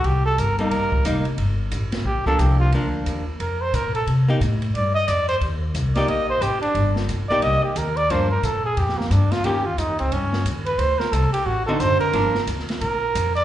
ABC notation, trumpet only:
X:1
M:4/4
L:1/8
Q:"Swing" 1/4=179
K:Gm
V:1 name="Trumpet"
G A B B4- B | z4 G A G F | z4 B c B A | z4 d e d c |
z3 d e c G D- | D z2 d e G B d | c B A _A G B, D F | G F E C _D2 z =B |
c B A G ^F A c B- | B2 z2 B3 d |]